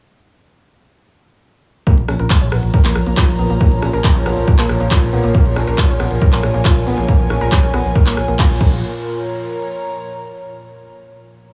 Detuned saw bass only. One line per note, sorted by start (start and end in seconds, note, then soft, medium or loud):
1.98 2.05 A#1 medium
2.08 2.16 A#1 loud
2.19 2.26 A#1 medium
2.41 2.48 A#1 medium
2.52 2.59 A#1 loud
2.63 2.70 A#1 medium
2.85 2.92 A#1 medium
2.95 3.03 A#1 loud
3.06 3.13 A#1 medium
3.28 3.35 A#1 medium
3.39 3.46 A#1 loud
3.50 3.57 A#1 medium
3.72 3.79 A#1 medium
3.82 3.90 A#1 loud
3.93 4.00 A#1 medium
4.15 4.22 A#1 medium
4.26 4.33 A#1 loud
4.37 4.44 A#1 medium
4.59 4.66 A#1 medium
4.69 4.76 A#1 loud
4.80 4.87 A#1 medium
5.02 5.09 A#1 medium
5.13 5.20 A#1 loud
5.24 5.31 A#1 medium
5.45 5.52 A#1 medium
5.56 5.63 A#1 loud
5.67 5.74 A#1 medium
5.89 5.96 A#1 medium
6.00 6.07 A#1 loud
6.11 6.18 A#1 medium
6.32 6.39 A#1 medium
6.43 6.50 A#1 loud
6.54 6.61 A#1 medium
6.76 6.83 A#1 medium
6.87 6.94 A#1 loud
6.98 7.05 A#1 medium
7.19 7.26 A#1 medium
7.30 7.37 A#1 loud
7.41 7.48 A#1 medium
7.63 7.70 A#1 medium
7.74 7.81 A#1 loud
7.85 7.92 A#1 medium
8.06 8.13 A#1 medium
8.17 8.24 A#1 loud
8.28 8.35 A#1 medium
8.50 8.57 A#1 medium
8.61 8.81 A#1 loud